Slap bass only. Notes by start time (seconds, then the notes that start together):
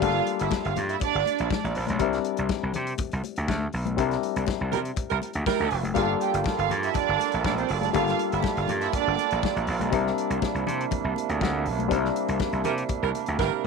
0.02 G1
0.41 G1
0.65 G1
0.77 G2
1.15 G1
1.40 A#1
1.64 A#1
1.77 A#1
1.89 B1
2.00 C2
2.39 C2
2.63 C2
2.75 C3
3.13 C2
3.38 D2
3.48 D2
3.74 B1
3.98 C2
4.36 C2
4.61 C2
4.73 C3
5.11 C2
5.35 D2
5.60 D2
5.72 F1
5.84 F#1
5.96 G1
6.34 G1
6.59 G1
6.70 G2
7.09 G1
7.34 A#1
7.45 A#1
7.70 F#1
7.95 G1
8.33 G1
8.57 G1
8.69 G2
9.07 G1
9.32 A#1
9.56 A#1
9.68 A#1
9.81 B1
9.92 C2
10.30 C2
10.55 C2
10.66 C3
11.04 C2
11.29 D2
11.41 D2
11.65 B1
11.91 C2
12.29 C2
12.53 C2
12.65 C3
13.03 C2
13.28 D2
13.39 G1